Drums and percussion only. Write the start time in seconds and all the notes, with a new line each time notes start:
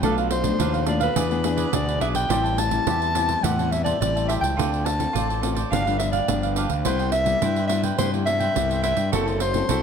0.03 pandeiro
0.18 pandeiro
0.31 pandeiro
0.44 pandeiro
0.60 pandeiro
0.74 pandeiro
0.87 pandeiro
1.01 pandeiro
1.16 pandeiro
1.31 pandeiro
1.44 pandeiro
1.58 pandeiro
1.73 pandeiro
1.89 pandeiro
2.01 pandeiro
2.15 pandeiro
2.30 pandeiro
2.46 pandeiro
2.58 pandeiro
2.71 pandeiro
2.87 pandeiro
3.02 pandeiro
3.15 pandeiro
3.29 pandeiro
3.44 pandeiro
3.59 pandeiro
3.72 pandeiro
3.86 pandeiro
4.02 pandeiro
4.17 pandeiro
4.29 pandeiro
4.44 pandeiro
4.59 pandeiro
4.74 pandeiro
4.86 pandeiro
5.00 pandeiro
5.16 pandeiro
5.30 pandeiro
5.43 pandeiro
5.57 pandeiro
5.73 pandeiro
5.87 pandeiro
6.00 pandeiro
6.13 pandeiro
6.28 pandeiro
6.43 pandeiro
6.56 pandeiro
6.70 pandeiro
6.85 pandeiro
6.99 pandeiro
7.12 pandeiro
7.26 pandeiro
7.42 pandeiro
7.56 pandeiro
7.69 pandeiro
7.84 pandeiro
7.99 pandeiro
8.14 pandeiro
8.27 pandeiro
8.40 pandeiro
8.56 pandeiro
8.71 pandeiro
8.84 pandeiro
8.97 pandeiro
9.13 pandeiro
9.28 pandeiro
9.40 pandeiro
9.54 pandeiro
9.69 pandeiro